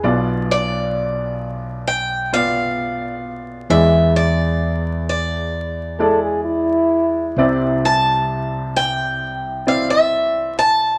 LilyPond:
<<
  \new Staff \with { instrumentName = "Steel-string acoustic guitar" } { \time 4/4 \key e \phrygian \tempo 4 = 66 r8 d''4. g''8 f''4. | e''8 d''4 d''2 r8 | r8 a''4 g''4 f''16 e''8. a''8 | }
  \new Staff \with { instrumentName = "French horn" } { \time 4/4 \key e \phrygian gis'16 r2. r8. | r2 r8 a'16 gis'16 e'4~ | e'16 r2. r8. | }
  \new Staff \with { instrumentName = "Felt piano" } { \time 4/4 \key e \phrygian <b f' d''>4. r4 <b f' d''>4 r8 | <gis e' d''>4. r4 <gis e' d''>4 r8 | <c' e' d''>4. r4 <c' e' d''>4 r8 | }
  \new Staff \with { instrumentName = "Felt piano" } { \clef bass \time 4/4 \key e \phrygian <b,, b,>1 | <e, e>1 | <c, c>1 | }
  \new Staff \with { instrumentName = "Fretless electric bass" } { \clef bass \time 4/4 \key e \phrygian b,,1 | e,1 | c,1 | }
>>